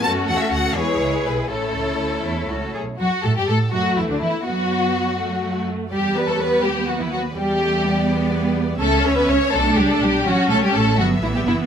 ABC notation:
X:1
M:6/8
L:1/16
Q:3/8=82
K:A
V:1 name="Violin section"
a2 f e f2 c4 B2 | A8- A2 z2 | [K:F#phr] F2 A G A2 F2 E D E2 | F8- F2 z2 |
d3 c3 B3 B3 | d12 | e6 d6 | c6 e6 |]
V:2 name="Violin section"
[FA]6 [GB]6 | [Ec]8- [Ec]2 z2 | [K:F#phr] F2 A G A2 F2 E D E2 | F8- F2 z2 |
G2 B A B2 G2 F E F2 | G8- G2 z2 | A2 c B c2 A2 G A G2 | F2 A G A2 F2 E G E2 |]
V:3 name="Viola section"
[A,C]6 [G,E]6 | [A,C]8- [A,C]2 z2 | [K:F#phr] z6 A,6 | B,6 A,6 |
G,6 B,6 | G,2 A,2 B,8 | C6 D6 | C6 B,6 |]
V:4 name="Cello section" clef=bass
F6 G6 | A6 E2 F2 G2 | [K:F#phr] F,2 A, G, A,2 F,2 E, D, E,2 | F,8- F,2 z2 |
G,2 B, A, B,2 G,2 F, E, F,2 | G,8- G,2 z2 | A,2 C B, C2 A,2 G, A, G,2 | F,2 A, G, A,2 F,2 E, G, E,2 |]
V:5 name="Double bass section" clef=bass
F,,2 E,,2 D,,2 E,,2 C,,2 B,,,2 | A,,,2 C,,2 D,,2 E,,2 C,,2 B,,,2 | [K:F#phr] F,,2 A,, G,, A,,2 F,,2 E,, D,, E,,2 | F,,8- F,,2 z2 |
E,,6 ^D,,6 | E,,12 | C,,2 D,,2 C,,2 B,,,2 C,,2 B,,,2 | A,,,2 B,,,2 A,,,2 G,,,2 A,,,2 F,,,2 |]